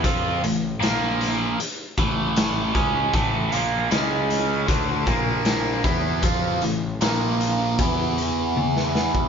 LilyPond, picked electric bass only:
\new Staff \with { instrumentName = "Picked electric bass" } { \clef bass \time 4/4 \tempo 4 = 77 f,8 a,,8 bes,,4 r8 a,,4 cis,8 | a,,8 bes,,8 cis,4 d,8 bes,,4 e,8 | f,8 a,,8 bes,,4 e,2 | }